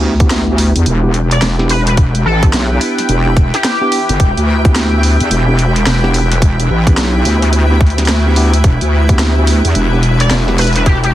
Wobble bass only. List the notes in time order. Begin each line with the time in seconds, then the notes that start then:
Already playing: D2
0.76 E2
0.86 E1
1.42 E1
2.25 A1
2.53 B1
3.09 E1
4.09 G1
4.20 E1
4.37 D2
5.21 E2
5.31 E1
5.86 E1
6.70 A1
6.98 B1
7.25 D2
8.08 D2
8.64 E1
8.82 D2
9.65 E2
9.76 E1
10.31 E1